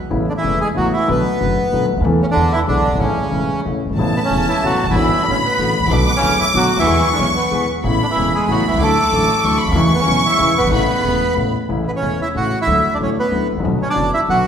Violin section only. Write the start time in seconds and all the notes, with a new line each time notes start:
3.98 A5
4.95 B5
5.91 D6
6.86 C#6
7.84 B5
8.49 B5
8.80 D6
9.45 C#6
9.59 B5
9.76 C#6
10.72 B5